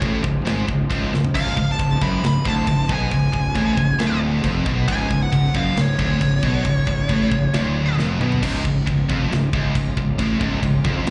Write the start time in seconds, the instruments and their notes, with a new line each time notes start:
Already playing: string section C#3 F3 G#3 C#4
0.01 fingered electric bass A1, distorted electric guitar A2, kick, china
0.24 fingered electric bass C#1, distorted electric guitar C#2, kick
0.45 fingered electric bass G#1, distorted electric guitar G#2, snare, china
0.68 fingered electric bass C#1, distorted electric guitar C#2, kick
0.90 fingered electric bass C#1, distorted electric guitar C#2, kick, china
1.12 fingered electric bass C#1, distorted electric guitar C#2, snare
1.25 floor tom
1.35 fingered electric bass C#1, distorted electric guitar C#2, string section B3, lead electric guitar F5, kick, crash, china
1.57 fingered electric bass C#1, distorted electric guitar C#2, kick
1.71 lead electric guitar A5
1.79 fingered electric bass C#1, distorted electric guitar C#2, kick, china
2.00 fingered electric bass F#1, distorted electric guitar F#2, lead electric guitar B5, kick
2.23 fingered electric bass C#1, distorted electric guitar C#2, lead electric guitar B5, snare, china
2.44 fingered electric bass D1, distorted electric guitar D2, lead electric guitar A5, kick
2.67 fingered electric bass C#1, distorted electric guitar C#2, kick, china
2.89 fingered electric bass B1, distorted electric guitar B2, lead electric guitar G#5, kick
3.11 fingered electric bass C#1, distorted electric guitar C#2, kick, china
3.33 fingered electric bass C#1, distorted electric guitar C#2, kick
3.55 fingered electric bass A1, distorted electric guitar A2, kick, china
3.77 fingered electric bass C#1, distorted electric guitar C#2, kick
3.99 fingered electric bass D1, distorted electric guitar D2, snare, china
4.43 fingered electric bass F1, distorted electric guitar F2, kick, china
4.66 fingered electric bass B1, distorted electric guitar B2, kick
4.87 fingered electric bass C#1, distorted electric guitar C#2, lead electric guitar G#5, kick, china
5.10 fingered electric bass C#1, distorted electric guitar C#2, kick
5.23 lead electric guitar F#5
5.31 fingered electric bass C#1, distorted electric guitar C#2, kick, china
5.54 fingered electric bass F#1, distorted electric guitar F#2, lead electric guitar F5, kick
5.77 fingered electric bass C#1, distorted electric guitar C#2, snare, china
5.81 lead electric guitar C#5
5.98 fingered electric bass D1, distorted electric guitar D2, kick
6.20 fingered electric bass C#1, distorted electric guitar C#2, kick, china
6.42 fingered electric bass B1, distorted electric guitar B2, kick
6.65 fingered electric bass C#1, distorted electric guitar C#2, kick, china
6.87 fingered electric bass C#1, distorted electric guitar C#2, kick
7.08 fingered electric bass A1, distorted electric guitar A2, kick, china
7.30 fingered electric bass C#1, distorted electric guitar C#2, kick
7.53 fingered electric bass D1, distorted electric guitar D2, snare, china
7.98 fingered electric bass F1, distorted electric guitar F2, snare
8.19 fingered electric bass B1, distorted electric guitar B2, mid tom
8.32 floor tom
8.42 fingered electric bass C#1, distorted electric guitar C#2, string section C#3 G#3 C#4 F4, kick, crash, china
8.64 fingered electric bass C#1, distorted electric guitar C#2, kick
8.86 fingered electric bass C#1, distorted electric guitar C#2, kick, china
9.09 fingered electric bass F1, distorted electric guitar F2, kick
9.31 fingered electric bass C#1, distorted electric guitar C#2, snare, china
9.53 fingered electric bass C#1, distorted electric guitar C#2, kick
9.75 fingered electric bass C#1, distorted electric guitar C#2, kick, china
9.97 fingered electric bass C#1, distorted electric guitar C#2, kick
10.18 fingered electric bass A1, distorted electric guitar A2, kick, china
10.40 fingered electric bass C#1, distorted electric guitar C#2, kick
10.62 fingered electric bass C#1, distorted electric guitar C#2, kick, china
10.84 fingered electric bass F1, distorted electric guitar F2, kick
11.04 fingered electric bass C#1, distorted electric guitar C#2, china